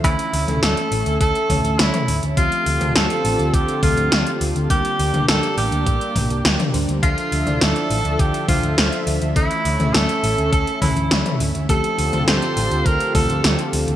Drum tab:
HH |xxoxxxoxxxoxxxox|xxoxxxoxxxoxxxox|xxoxxxoxxxoxxxox|xxoxxxoxxxoxxxox|
SD |----o-------o---|----o-------o---|----o-------o---|----o-------o---|
T2 |---o------o--o--|---o------o-----|---o------o--o--|---o------o-----|
BD |o-------o-o-----|o-------o-o-----|o-------o-o-----|o-------o-o-----|

HH |xxoxxxoxxxoxxxox|xxoxxxoxxxoxxxox|
SD |----o-------o---|----o-------o---|
T2 |---o------o--o--|---o------o-----|
BD |o-------o-o-----|o-------o-o-----|